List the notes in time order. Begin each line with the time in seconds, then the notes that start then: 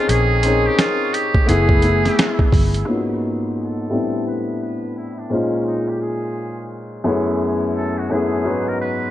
Already playing: C4 C#4 D#4 F4 G#4 A#4 C#6 D#6
0.09 A#1 G#4, closed hi-hat
0.43 C4 C#4 D#4 G#4, closed hi-hat
0.67 G4
0.79 F4, snare, closed hi-hat
1.14 G4, closed hi-hat
1.35 kick
1.46 F#1 A3 B3 E4 G#4 B5 E6, closed hi-hat
1.69 kick
1.81 A3 B3 E4 G#4, closed hi-hat
2.05 snare, closed hi-hat
2.19 snare, closed hi-hat
2.39 kick
2.52 G1, kick, open hi-hat
2.74 closed hi-hat
2.85 G#2 A#3 B3 C#4 D#4 F4
2.95 F#4
3.58 A4
3.89 A2 G3 B3 C4 D4
3.93 E4
4.27 B4
4.62 B4
4.98 E4
5.19 D4
5.30 A#2 G#3 C#4 D#4 C5
5.34 F4
5.67 D#4
5.88 G4
6.02 G#4
7.04 F#2 A3 B3 C#4 E4 G#4
7.77 A4
7.98 F#4
8.09 F#2 A3 B3 C#4 E4 G#4
8.44 G#2 F#3 B3 C#4 D#4 B4
8.68 A#4
8.81 B4